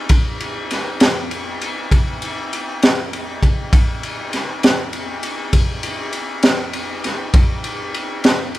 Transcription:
0.09 kick loud
0.09 ride medium
0.40 ride medium
0.71 snare soft
0.71 ride medium
1.00 snare loud
1.00 ride medium
1.31 ride medium
1.61 ride medium
1.91 kick medium
1.91 ride medium
2.22 ride medium
2.53 ride medium
2.82 snare loud
2.82 ride medium
3.13 ride medium
3.43 kick medium
3.43 ride medium
3.73 kick loud
3.73 ride medium
4.03 ride medium
4.33 snare soft
4.33 ride medium
4.63 snare loud
4.63 ride medium
4.93 ride medium
5.23 ride medium
5.53 kick medium
5.53 ride medium
5.83 ride medium
6.13 ride medium
6.43 snare loud
6.43 ride medium
6.73 ride medium
7.04 snare soft
7.04 ride medium
7.34 kick loud
7.34 ride medium
7.64 ride medium
7.94 ride medium
8.24 snare loud
8.24 ride medium
8.55 ride medium

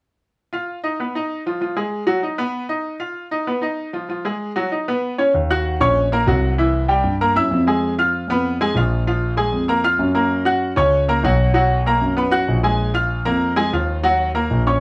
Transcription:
0.53 0.78 F4 medium
0.53 0.78 F5 medium
0.84 0.96 D#4 medium
0.84 0.96 D#5 medium
1.00 1.12 B3 medium
1.00 1.12 B4 medium
1.15 1.40 D#4 medium
1.15 1.41 D#5 medium
1.46 1.59 F3 medium
1.46 1.59 F4 medium
1.61 1.74 F3 medium
1.61 1.74 F4 medium
1.77 2.02 G#3 medium
1.77 2.02 G#4 medium
2.07 2.20 F#3 medium
2.07 2.20 F#4 medium
2.23 2.36 D#4 medium
2.23 2.36 D#5 medium
2.38 2.64 B3 medium
2.38 2.64 B4 medium
2.69 2.95 D#4 medium
2.69 2.95 D#5 medium
3.00 3.26 F4 medium
3.00 3.26 F5 medium
3.31 3.44 D#4 medium
3.31 3.45 D#5 medium
3.47 3.60 B3 medium
3.47 3.60 B4 medium
3.62 3.88 D#4 medium
3.62 3.88 D#5 medium
3.93 4.06 F3 medium
3.93 4.07 F4 medium
4.09 4.22 F3 medium
4.09 4.22 F4 medium
4.25 4.50 G#3 medium
4.25 4.51 G#4 medium
4.56 4.69 F#3 medium
4.56 4.69 F#4 medium
4.72 4.84 D#4 medium
4.72 4.85 D#5 medium
4.88 5.13 B3 medium
4.88 5.13 B4 medium
5.18 5.31 C#4 medium
5.18 5.31 C#5 medium
5.34 5.77 D#2 loud
5.50 5.76 F#4 medium
5.50 5.75 F#5 medium
5.50 5.76 F#6 medium
5.80 6.24 A#1 medium
5.80 6.06 C#4 medium
5.80 6.06 C#5 medium
5.80 6.06 C#6 medium
6.12 6.25 A#3 medium
6.12 6.25 A#4 medium
6.12 6.25 A#5 medium
6.27 6.99 C2 loud
6.27 6.52 F#3 medium
6.27 6.53 F#4 medium
6.27 6.53 F#5 medium
6.58 6.84 E3 medium
6.58 6.84 E4 medium
6.58 6.84 E5 medium
6.88 7.14 G3 medium
6.88 7.14 G4 medium
6.88 7.15 G5 medium
7.04 7.33 G2 medium
7.21 7.34 A#3 medium
7.21 7.33 A#4 medium
7.21 7.34 A#5 medium
7.35 7.50 F#2 medium
7.35 7.61 E4 medium
7.35 7.62 E5 medium
7.35 7.62 E6 medium
7.51 8.23 F2 loud
7.67 7.92 G#3 medium
7.67 7.93 G#4 medium
7.67 7.93 G#5 medium
7.99 8.24 F4 medium
7.99 8.24 F5 medium
7.99 8.24 F6 medium
8.28 8.72 F2 medium
8.28 8.55 B3 medium
8.28 8.55 B4 medium
8.28 8.55 B5 medium
8.61 8.73 G#3 medium
8.61 8.73 G#4 medium
8.61 8.74 G#5 medium
8.75 9.47 A#1 medium
8.75 9.01 F3 medium
8.75 9.01 F4 medium
8.75 9.02 F5 medium
9.07 9.32 F3 medium
9.07 9.32 F4 medium
9.07 9.33 F5 medium
9.37 9.62 G#3 medium
9.37 9.63 G#4 medium
9.37 9.63 G#5 medium
9.52 9.96 F2 medium
9.68 9.81 A#3 medium
9.68 9.82 A#4 medium
9.68 9.82 A#5 medium
9.84 10.10 F4 medium
9.84 10.10 F5 medium
9.84 10.10 F6 medium
9.99 10.71 F#2 medium
10.15 10.40 A#3 medium
10.15 10.40 A#4 medium
10.15 10.40 A#5 medium
10.45 10.71 F#4 medium
10.45 10.72 F#5 medium
10.45 10.72 F#6 medium
10.76 11.20 C#2 medium
10.76 11.02 C#4 medium
10.76 11.03 C#5 medium
10.76 11.03 C#6 medium
11.08 11.21 A#3 medium
11.08 11.21 A#4 medium
11.08 11.21 A#5 medium
11.23 11.96 B1 loud
11.23 11.50 F#3 medium
11.23 11.50 F#4 medium
11.23 11.50 F#5 medium
11.54 11.80 F#3 medium
11.54 11.80 F#4 medium
11.54 11.80 F#5 medium
11.86 12.12 A#3 medium
11.86 12.12 A#4 medium
11.86 12.12 A#5 medium
12.01 12.45 F#2 medium
12.17 12.30 B3 medium
12.17 12.30 B4 medium
12.17 12.30 B5 medium
12.31 12.57 F#4 medium
12.31 12.57 F#5 medium
12.31 12.58 F#6 medium
12.48 13.20 A#1 medium
12.63 12.89 G#3 medium
12.63 12.89 G#4 medium
12.63 12.89 G#5 medium
12.94 13.20 F4 medium
12.94 13.20 F5 medium
12.94 13.20 F6 medium
13.25 13.69 F2 medium
13.25 13.51 A#3 medium
13.25 13.51 A#4 medium
13.25 13.51 A#5 medium
13.56 13.69 G#3 medium
13.56 13.69 G#4 medium
13.56 13.70 G#5 medium
13.73 14.45 D#2 loud
13.73 13.98 F3 medium
13.73 13.98 F4 medium
13.73 13.99 F5 medium
14.03 14.29 F#3 medium
14.03 14.29 F#4 medium
14.03 14.29 F#5 medium
14.35 14.60 A#3 medium
14.35 14.60 A#4 medium
14.35 14.60 A#5 medium
14.51 14.79 A#1 medium
14.67 14.79 C#4 medium
14.67 14.79 C#5 medium
14.67 14.79 C#6 medium

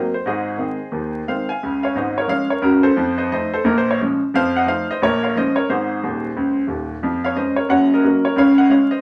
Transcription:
0.00 0.11 F#3 soft
0.00 0.11 A#3 soft
0.00 0.11 C4 soft
0.00 0.12 A#4 medium
0.00 0.12 C5 medium
0.00 0.14 D#5 medium
0.14 0.26 C5 medium
0.26 0.55 G#1 medium
0.26 0.54 G#2 medium
0.26 1.24 G#4 medium
0.26 1.24 C5 medium
0.26 1.28 D#5 medium
0.57 0.77 D#3 soft
0.57 0.77 G#3 soft
0.57 0.78 C4 soft
0.92 1.21 D#2 medium
0.92 1.21 D#3 medium
1.28 1.46 D#3 soft
1.28 1.46 G#3 soft
1.28 1.47 C4 soft
1.28 1.48 C5 medium
1.28 1.49 F5 medium
1.49 1.82 F5 medium
1.49 1.83 G#5 medium
1.63 1.90 C#2 medium
1.63 1.89 C#3 medium
1.83 1.95 C#5 medium
1.83 1.95 F5 medium
1.95 2.23 G#1 medium
1.95 2.22 G#2 medium
1.95 2.16 C5 medium
1.95 2.17 D#5 medium
2.18 2.30 A#4 medium
2.18 2.29 C#5 medium
2.27 2.47 F3 soft
2.27 2.47 G#3 soft
2.27 2.47 C#4 soft
2.27 2.49 C#5 medium
2.27 2.51 F5 loud
2.50 2.61 A#4 medium
2.50 2.63 C#5 medium
2.62 2.89 C#2 medium
2.62 2.90 C#3 medium
2.62 2.84 F#4 medium
2.62 2.84 A#4 medium
2.83 3.15 A4 medium
2.83 3.17 C5 medium
2.97 3.26 F2 medium
2.97 3.26 F3 medium
3.18 3.30 C5 medium
3.18 3.31 D#5 medium
3.32 3.50 F3 soft
3.32 3.51 A3 medium
3.32 3.51 D#4 medium
3.32 3.52 C5 medium
3.32 3.53 D#5 medium
3.54 3.65 A4 medium
3.54 3.65 C5 medium
3.64 3.93 A#1 medium
3.64 3.94 A#2 medium
3.64 3.76 A#4 medium
3.78 3.88 C5 medium
3.91 4.00 C#5 medium
4.01 4.20 F3 soft
4.01 4.19 G#3 medium
4.01 4.19 C#4 medium
4.34 4.62 F2 medium
4.34 4.62 F3 medium
4.34 4.55 C5 medium
4.34 4.55 F5 loud
4.56 4.68 D#5 medium
4.56 4.68 F#5 medium
4.66 4.85 F3 soft
4.66 4.85 A3 soft
4.66 4.86 D#4 medium
4.66 4.87 C5 medium
4.66 4.89 F5 loud
4.91 5.02 C5 medium
4.91 5.02 D#5 medium
5.02 5.30 A#1 medium
5.02 5.30 A#2 medium
5.02 5.22 A#4 medium
5.02 5.23 C#5 loud
5.23 5.35 C#5 medium
5.23 5.35 F5 medium
5.36 5.54 F3 medium
5.36 5.55 G#3 soft
5.36 5.55 C#4 medium
5.36 5.56 C5 medium
5.36 5.57 D#5 medium
5.56 5.68 A#4 medium
5.56 5.68 C#5 medium
5.69 5.96 G#1 medium
5.69 5.96 G#2 medium
5.69 6.67 G#4 medium
5.69 6.70 C5 medium
6.03 6.28 D#1 medium
6.03 6.28 D#2 medium
6.37 6.62 C#2 medium
6.67 6.93 D#1 medium
6.67 6.94 D#2 medium
7.03 7.32 F2 medium
7.03 7.32 F3 medium
7.24 7.37 C#5 medium
7.24 7.37 F5 medium
7.36 7.55 G#3 soft
7.36 7.55 C#4 soft
7.36 7.57 C5 medium
7.36 7.58 D#5 medium
7.56 7.69 A#4 medium
7.56 7.70 C#5 medium
7.69 7.99 F#1 medium
7.69 7.98 F#2 medium
7.69 7.91 C#5 medium
7.69 7.92 F#5 medium
7.94 8.25 A#4 medium
7.94 8.27 D#5 medium
8.04 8.23 F#3 medium
8.04 8.23 A#3 medium
8.04 8.23 C#4 soft
8.25 8.37 A#4 medium
8.25 8.38 C#5 medium
8.36 8.66 C#2 medium
8.36 8.66 C#3 medium
8.36 8.59 C#5 medium
8.36 8.60 F5 medium
8.58 8.71 D#5 medium
8.58 8.71 F#5 medium
8.69 8.89 G#3 soft
8.69 8.89 C#4 soft
8.69 8.92 C#5 medium
8.69 8.93 F5 medium
8.91 9.01 C5 medium
8.91 9.01 D#5 medium

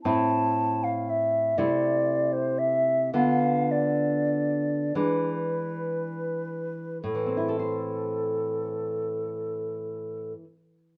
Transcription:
0.04 1.54 A2 soft
0.04 1.54 C4 soft
0.04 1.54 E4 soft
0.04 0.85 A5 medium
0.84 1.11 F5 soft
1.10 1.59 E5 soft
1.58 3.10 C3 soft
1.58 3.11 A3 soft
1.58 3.11 E4 soft
1.58 2.34 D5 soft
2.33 2.60 C5 soft
2.59 3.14 E5 medium
3.14 4.91 D3 soft
3.14 4.91 B3 soft
3.14 4.91 F4 soft
3.14 3.73 F5 medium
3.71 4.97 D5 soft
4.95 7.00 E3 soft
4.95 7.00 G#3 soft
4.95 7.00 D4 soft
4.95 7.03 B4 soft
7.04 10.33 A2 soft
7.04 10.33 A4 soft
7.15 10.44 E3 soft
7.26 10.56 C4 soft
7.37 7.59 E4 soft
7.48 10.78 A4 soft
7.59 10.89 C5 soft

